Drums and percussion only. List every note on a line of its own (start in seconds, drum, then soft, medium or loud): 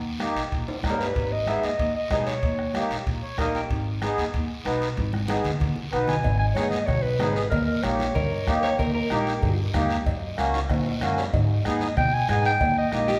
0.20 bombo rim medium
0.20 high conga medium
0.20 high timbale medium
0.20 short guiro medium
0.37 high timbale medium
0.37 short guiro medium
0.52 bombo low medium
0.52 high conga soft
0.52 high timbale medium
0.52 long guiro medium
0.68 high timbale medium
0.83 bombo low medium
0.83 bombo rim medium
0.83 high conga medium
0.83 short guiro medium
0.90 low timbale medium
1.01 low timbale medium
1.01 short guiro medium
1.15 bombo low medium
1.15 high conga soft
1.15 high timbale medium
1.15 long guiro medium
1.46 bombo rim medium
1.46 high conga medium
1.46 high timbale medium
1.46 short guiro medium
1.63 high timbale medium
1.63 short guiro medium
1.79 bombo low medium
1.79 high conga soft
1.79 high timbale medium
1.79 long guiro medium
2.10 bombo low medium
2.10 bombo rim medium
2.10 high conga medium
2.10 high timbale medium
2.10 low timbale medium
2.10 short guiro medium
2.27 high timbale medium
2.27 short guiro medium
2.42 bombo low medium
2.42 high conga soft
2.42 high timbale medium
2.42 long guiro medium
2.59 bombo rim medium
2.74 bombo rim medium
2.74 high conga medium
2.74 high timbale medium
2.74 short guiro medium
2.91 high timbale medium
2.91 short guiro medium
3.06 bombo low medium
3.06 high conga soft
3.06 high timbale medium
3.06 long guiro medium
3.38 bombo low medium
3.38 bombo rim medium
3.38 high conga medium
3.38 high timbale medium
3.38 low timbale medium
3.38 short guiro medium
3.55 high timbale medium
3.55 short guiro medium
3.70 bombo low medium
3.70 high conga soft
3.70 high timbale medium
3.70 long guiro medium
4.02 bombo rim medium
4.02 high conga medium
4.02 high timbale medium
4.02 short guiro medium
4.18 high timbale medium
4.18 short guiro medium
4.34 bombo low medium
4.34 high conga soft
4.34 high timbale medium
4.34 long guiro medium
4.65 bombo rim medium
4.65 high conga medium
4.65 high timbale medium
4.65 short guiro medium
4.82 high timbale medium
4.82 short guiro medium
4.97 bombo low medium
4.97 high conga medium
4.97 high timbale medium
4.97 long guiro medium
5.13 bombo rim medium
5.13 high conga medium
5.28 bombo rim medium
5.28 high conga medium
5.28 high timbale medium
5.28 short guiro medium
5.45 low conga loud
5.45 high timbale medium
5.45 short guiro medium
5.60 bombo low medium
5.60 low conga medium
5.60 high timbale medium
5.60 long guiro medium
5.76 low conga medium
5.93 bombo rim medium
5.93 high timbale medium
5.93 short guiro medium
6.08 low conga loud
6.08 high timbale medium
6.08 short guiro medium
6.23 bombo low medium
6.23 cowbell loud
6.23 low conga medium
6.23 long guiro medium
6.55 bombo rim medium
6.55 cowbell medium
6.55 high conga medium
6.55 short guiro medium
6.71 high conga medium
6.71 short guiro medium
6.87 bombo low medium
6.87 bombo rim medium
6.87 cowbell medium
6.87 low conga medium
6.87 long guiro medium
7.19 bombo rim medium
7.19 cowbell medium
7.19 high conga medium
7.19 low conga medium
7.19 low timbale medium
7.19 short guiro medium
7.36 short guiro medium
7.51 bombo low medium
7.51 cowbell loud
7.51 low conga medium
7.51 long guiro medium
7.83 bombo rim medium
7.83 cowbell medium
7.83 high conga medium
7.83 short guiro medium
7.99 high conga medium
7.99 short guiro medium
8.15 bombo low medium
8.15 cowbell medium
8.15 low conga medium
8.15 long guiro medium
8.47 bombo low medium
8.47 bombo rim medium
8.47 cowbell medium
8.47 high conga medium
8.47 short guiro medium
8.63 short guiro medium
8.79 bombo low medium
8.79 cowbell loud
8.79 low conga medium
8.79 long guiro medium
9.10 bombo rim medium
9.10 cowbell medium
9.10 high conga medium
9.10 short guiro medium
9.27 short guiro medium
9.42 bombo low medium
9.42 cowbell medium
9.42 low conga medium
9.42 long guiro medium
9.74 bombo rim medium
9.74 cowbell medium
9.74 high conga medium
9.74 low conga medium
9.74 short guiro medium
9.90 short guiro medium
10.06 bombo low medium
10.06 cowbell loud
10.06 long guiro medium
10.38 bombo rim medium
10.38 cowbell medium
10.38 high conga medium
10.38 short guiro medium
10.54 high timbale medium
10.54 short guiro medium
10.69 bombo low medium
10.69 bombo rim medium
10.69 cowbell medium
10.69 low conga medium
10.69 high timbale medium
10.69 long guiro medium
10.86 high timbale medium
11.01 bombo rim medium
11.01 cowbell medium
11.01 high conga medium
11.01 low conga medium
11.01 short guiro medium
11.18 low timbale medium
11.18 short guiro medium
11.33 bombo low medium
11.33 cowbell loud
11.33 low conga medium
11.33 long guiro medium
11.65 bombo rim medium
11.65 cowbell medium
11.65 high conga medium
11.65 short guiro medium
11.81 high conga medium
11.81 short guiro medium
11.97 bombo low medium
11.97 bombo rim medium
11.97 cowbell medium
11.97 low conga medium
11.97 long guiro medium
12.29 bombo rim medium
12.29 cowbell medium
12.29 high conga medium
12.29 short guiro medium
12.45 short guiro medium
12.60 bombo low medium
12.60 cowbell loud
12.60 low conga medium
12.60 long guiro medium
12.92 bombo rim medium
12.92 cowbell medium
12.92 high conga medium
12.92 short guiro medium
13.08 high conga medium
13.08 short guiro medium